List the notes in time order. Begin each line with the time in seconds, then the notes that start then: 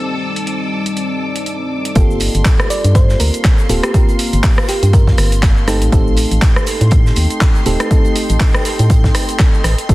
Already playing: G3 C4 D#4 A4 D5 A5 D6 E6
0.36 closed hi-hat
0.47 closed hi-hat
0.86 closed hi-hat
0.97 closed hi-hat
1.36 closed hi-hat
1.46 closed hi-hat
1.85 closed hi-hat
1.95 G1 A#3 C4 F4 G4 A4 F5 A5 C6, kick, closed hi-hat, shaker
2.11 shaker
2.20 closed hi-hat, open hi-hat, shaker
2.35 G1, closed hi-hat, shaker
2.45 kick, snare, clap, closed hi-hat, shaker
2.60 cross-stick, shaker
2.70 D5, closed hi-hat, open hi-hat, shaker
2.84 G2, closed hi-hat, shaker
2.95 C5, kick, closed hi-hat, shaker
3.09 snare, shaker
3.20 D2 A#4, closed hi-hat, open hi-hat, shaker
3.34 closed hi-hat, shaker
3.44 kick, snare, clap, closed hi-hat, shaker
3.58 closed hi-hat, shaker
3.69 D1 A#3 C4 F4 G4 A4, closed hi-hat, open hi-hat, shaker
3.83 G4, cross-stick, closed hi-hat, shaker
3.94 A#3 C4 F4 G4 A#4, kick, closed hi-hat, shaker
4.09 closed hi-hat, shaker
4.19 closed hi-hat, open hi-hat, shaker
4.33 G1, closed hi-hat, shaker
4.44 kick, snare, clap, closed hi-hat, open hi-hat, shaker
4.58 cross-stick, shaker
4.68 G4, snare, closed hi-hat, open hi-hat, shaker
4.83 G2 G4, closed hi-hat, shaker
4.93 A#4, kick, closed hi-hat, shaker
5.07 kick, snare, shaker
5.18 G1, cross-stick, closed hi-hat, open hi-hat, shaker
5.32 closed hi-hat, shaker
5.43 kick, snare, clap, closed hi-hat, shaker
5.58 shaker
5.67 A3 C4 D#4 G4 A4 D#5 G5 C6, cross-stick, snare, closed hi-hat, open hi-hat, shaker
5.82 A1, closed hi-hat, shaker
5.92 A1 A3 C4 D#4 G4 A4, kick, closed hi-hat, shaker
6.07 shaker
6.17 closed hi-hat, open hi-hat, shaker
6.31 A1, closed hi-hat, shaker
6.42 kick, snare, clap, closed hi-hat, shaker
6.56 cross-stick, shaker
6.66 closed hi-hat, open hi-hat, shaker
6.81 A2, closed hi-hat, shaker
6.91 kick, closed hi-hat, shaker
7.06 snare, shaker
7.16 D#2, closed hi-hat, open hi-hat, shaker
7.30 closed hi-hat, shaker
7.41 kick, snare, clap, closed hi-hat, shaker
7.55 closed hi-hat, shaker
7.66 D#1 A3 C4 D#4 G4 A4, closed hi-hat, open hi-hat, shaker
7.80 cross-stick, closed hi-hat, shaker
7.90 A3 C4 D#4 G4 A4, kick, closed hi-hat, shaker
8.05 closed hi-hat, shaker
8.16 closed hi-hat, open hi-hat, shaker
8.29 A1, closed hi-hat, shaker
8.40 kick, snare, clap, closed hi-hat, open hi-hat, shaker
8.54 cross-stick, shaker
8.65 snare, closed hi-hat, open hi-hat, shaker
8.79 A2, closed hi-hat, shaker
8.90 kick, closed hi-hat, shaker
9.04 kick, snare, shaker
9.15 cross-stick, closed hi-hat, open hi-hat, shaker
9.29 closed hi-hat, shaker
9.39 kick, snare, clap, closed hi-hat, shaker
9.54 shaker
9.64 A1, cross-stick, snare, closed hi-hat, open hi-hat, shaker
9.78 closed hi-hat, shaker
9.89 G1 A#3 C4 F4 G4 A4, kick, closed hi-hat, shaker